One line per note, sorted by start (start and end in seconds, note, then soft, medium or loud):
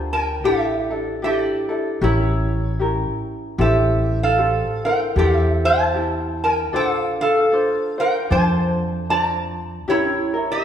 0.00 0.44 D2 medium
0.00 0.43 D4 medium
0.00 0.45 F4 medium
0.00 0.44 G4 medium
0.00 0.45 A#4 medium
0.00 0.12 A5 loud
0.13 0.43 A#4 medium
0.13 0.45 G5 medium
0.44 1.46 A1 medium
0.44 0.90 D4 medium
0.44 0.90 E4 medium
0.44 0.90 G4 medium
0.44 1.19 G4 medium
0.44 0.89 A4 medium
0.44 1.25 E5 medium
0.90 1.22 D4 soft
0.90 1.22 E4 soft
0.90 1.23 A4 soft
1.22 1.69 D4 medium
1.22 1.69 E4 medium
1.22 1.69 G4 medium
1.22 1.98 G4 medium
1.22 1.68 A4 medium
1.22 2.03 D5 medium
1.69 2.01 D4 soft
1.69 2.01 E4 soft
1.69 2.01 A4 medium
2.01 3.04 A1 medium
2.01 2.79 C#4 medium
2.01 2.80 E4 medium
2.01 2.77 E4 soft
2.01 2.79 G4 medium
2.01 2.80 A#4 medium
2.01 2.77 C#5 medium
2.79 3.59 C#4 medium
2.79 3.59 E4 medium
2.79 3.58 G4 soft
2.79 3.59 A#4 medium
3.58 4.61 A1 medium
3.58 4.38 C4 medium
3.58 4.38 E4 medium
3.58 4.36 G4 medium
3.58 4.18 G4 medium
3.58 4.39 A4 medium
3.58 4.23 E5 medium
4.23 4.81 A4 medium
4.23 4.84 F5 medium
4.37 4.84 C4 medium
4.37 4.83 G4 soft
4.37 4.84 A4 medium
4.84 5.16 C4 soft
4.84 5.16 E4 soft
4.84 5.15 A#4 medium
4.84 5.17 G5 medium
5.16 6.74 E2 medium
5.16 5.94 C4 medium
5.16 5.94 E4 medium
5.16 5.93 G4 medium
5.16 5.61 G4 medium
5.16 5.97 A4 medium
5.16 5.65 E5 medium
5.65 6.39 C5 medium
5.65 6.43 A5 loud
5.94 6.73 C4 medium
5.94 6.74 E4 medium
5.94 6.72 G4 medium
6.44 6.73 A#4 medium
6.44 6.75 G5 medium
6.73 7.76 A#1 medium
6.73 7.52 D4 medium
6.73 7.52 F4 medium
6.73 7.51 A4 medium
6.73 7.18 A4 medium
6.73 7.52 C5 medium
6.73 6.94 F#5 medium
6.94 7.20 F5 medium
7.21 7.96 A4 medium
7.21 7.99 F5 medium
7.52 7.98 D4 medium
7.52 7.98 F4 medium
7.52 7.98 A4 medium
7.52 7.97 C5 medium
7.98 8.30 D4 soft
7.98 8.30 F4 soft
7.98 8.30 A#4 medium
7.98 8.31 C5 soft
7.98 8.32 G5 medium
8.30 9.88 F2 medium
8.30 9.08 D4 medium
8.30 9.09 F4 medium
8.30 9.87 A4 medium
8.30 9.10 C5 medium
8.30 9.06 C5 medium
8.30 9.10 A5 loud
9.09 9.88 D4 medium
9.09 9.88 F4 medium
9.09 9.88 C5 medium
9.09 9.69 D5 medium
9.09 9.68 A#5 medium
9.88 10.64 A1 medium
9.88 10.35 C#4 medium
9.88 10.34 E4 medium
9.88 10.48 E4 medium
9.88 10.34 G4 medium
9.88 10.32 A#4 medium
9.88 10.53 C#5 medium
10.34 10.64 C#4 soft
10.34 10.64 E4 soft
10.34 10.64 A#4 soft
10.52 10.64 G4 medium
10.52 10.64 E5 medium